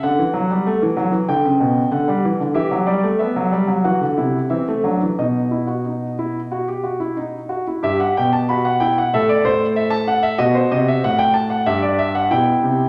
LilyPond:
<<
  \new Staff \with { instrumentName = "Grand piano" } { \time 4/4 \key e \minor \tempo 4 = 93 << { fis''2 g''4 fis''4 | e''8 d''8 e''4 fis''4 e''4 | dis''2.~ dis''8 r8 | e''16 fis''16 g''16 a''16 b''16 fis''16 g''16 fis''16 e''16 d''16 c''8 e''16 a''16 fis''16 e''16 |
dis''16 c''16 dis''16 e''16 fis''16 g''16 a''16 fis''16 e''16 d''16 e''16 fis''16 g''4 | } \\ { r1 | g'2 fis'8 e'8 c'8 d'8 | dis'8 e'16 fis'16 dis'8 e'8 fis'16 g'16 fis'16 e'16 dis'8 fis'16 e'16 | g'4 fis'8 e'8 a'2 |
fis'2 g'4 e'4 | } >> }
  \new Staff \with { instrumentName = "Grand piano" } { \clef bass \time 4/4 \key e \minor d16 e16 fis16 g16 a16 e16 fis16 e16 d16 cis16 b,8 d16 g16 e16 d16 | e16 fis16 g16 a16 b16 fis16 g16 fis16 e16 d16 c8 e16 a16 fis16 e16 | b,2.~ b,8 r8 | g,8 b,4. a,8 a,4. |
b,8 c8 a,4 g,4 b,8 c8 | }
>>